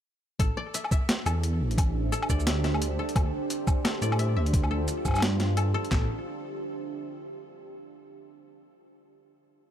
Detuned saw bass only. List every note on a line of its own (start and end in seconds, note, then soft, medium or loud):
0.39 0.49 A1 loud
1.26 1.62 E2 loud
1.60 2.11 A1 loud
2.29 2.97 D2 medium
3.16 3.25 D2 loud
4.01 4.37 A2 loud
4.36 4.87 D2 loud
5.05 5.73 G2 loud
5.91 6.07 A1 loud